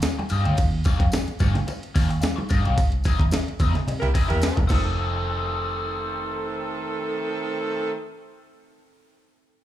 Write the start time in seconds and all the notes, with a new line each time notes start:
0.02 muted overdriven electric guitar stroke, snare, ride bell, tambourine, high conga
0.18 muted overdriven electric guitar stroke, high conga
0.29 G2 A#3 F4 G4 D#5, ride bell, tambourine
0.45 D2 A#3 F4 G4 C#5, ride bell
0.57 D#2, kick, ride bell, tambourine
0.84 A#3 F4 G4 C#5, kick, ride bell, tambourine, muted conga
1.00 F2, kick, ride bell
1.12 muted overdriven electric guitar stroke, snare, ride bell, tambourine, high conga
1.28 muted fingered electric bass stroke, ride bell
1.39 G2 A#3 F4 G4 C#5, kick, ride bell, tambourine, low conga
1.55 muted overdriven electric guitar stroke, snare, ride bell, low conga
1.67 muted overdriven electric guitar stroke, ride bell, tambourine, muted conga
1.83 ride bell
1.95 D#2 A#3 F4 G4 C#5, kick, open hi-hat, ride bell, tambourine
2.10 muted overdriven electric guitar stroke, ride bell
2.21 muted overdriven electric guitar stroke, snare, ride bell, tambourine, high conga
2.36 muted overdriven electric guitar stroke, high conga
2.49 G2 A#3 F4 G4 D#5, kick, ride bell, tambourine
2.65 B1 A#3 F4 G4 C#5, ride bell
2.77 C2, kick, ride bell, tambourine
2.92 ride bell
3.04 C4 E4 A#4 D#5, kick, ride bell, tambourine, muted conga
3.19 D#2, kick, ride bell
3.31 muted overdriven electric guitar stroke, snare, ride bell, tambourine, high conga
3.48 muted fingered electric bass stroke, ride bell
3.59 E2 C4 E4 A#4 D#5, kick, ride bell, tambourine, low conga
3.74 muted overdriven electric guitar stroke, snare, ride bell, low conga
3.87 C3, muted overdriven electric guitar stroke, ride bell, muted conga
4.00 C2 G3 A#3 E4 A#4, ride bell
4.14 C4 E4 A#4 D#5, kick, open hi-hat, ride bell
4.28 E2 G3 A#3 E4 A#4, muted overdriven electric guitar stroke, ride bell
4.42 muted overdriven electric guitar stroke, snare, ride bell, tambourine, high conga
4.57 E1, muted overdriven electric guitar stroke, kick, ride bell, high conga
4.68 F1 D#3 A3 C4 G4 A4, kick, crash, tambourine, muted conga
4.73 D#5